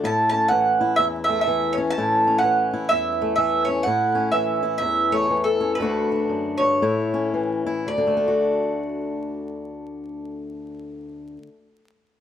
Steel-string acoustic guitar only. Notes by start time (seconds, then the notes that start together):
Already playing: A3
0.03 A2 E4
0.33 C#4
0.51 E3
0.81 E4
0.99 E2
1.29 A3
1.47 E3
1.78 C#4
1.98 A2 E4
2.27 C#4
2.43 E3
2.74 E4
2.92 E2
3.21 A3
3.38 E3
3.68 C#4
3.86 A2 E4
4.15 C#4
4.32 E3
4.63 E4
4.82 E2
5.12 A3
5.30 E3
5.61 C#4
5.80 D2 D3 A3 D4 F#4
6.12 D4
6.29 F#2
6.61 G2
6.82 A2 E4
7.14 C#4
7.34 E3
7.66 E4
7.87 D2
7.98 D3
8.07 A3
8.17 D4
8.28 F#4